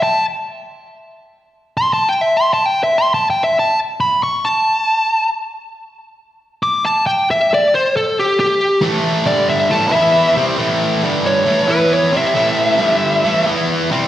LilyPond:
<<
  \new Staff \with { instrumentName = "Lead electric guitar" } { \time 4/4 \key e \dorian \tempo 4 = 136 a''8 r2. r8 | \tuplet 3/2 { c'''8 a''8 g''8 e''8 c'''8 a''8 g''8 e''8 c'''8 a''8 g''8 e''8 } | a''8 r8 b''8 cis'''8 a''2 | r2. d'''8 a''8 |
g''8 e''8 d''8 c''8 a'8 g'8 g'4 | r4 d''8 e''8 a''8 e''4 r8 | r4. cis''4 b'8 cis''8 e''8~ | e''2~ e''8 r4. | }
  \new Staff \with { instrumentName = "Distorted electric guitar" } { \clef bass \time 4/4 \key e \dorian r1 | r1 | r1 | r1 |
r1 | <a, e a>4 <g, d g>4 <a, e a>8 <e b e'>4 <c g c'>8 | <a, e a>4 <g, d g>4 <a, e a>8 <e b e'>4 <c g c'>8 | <a, e a>4 <g, d g>4 <a, e a>8 <e b e'>4 <c g c'>8 | }
>>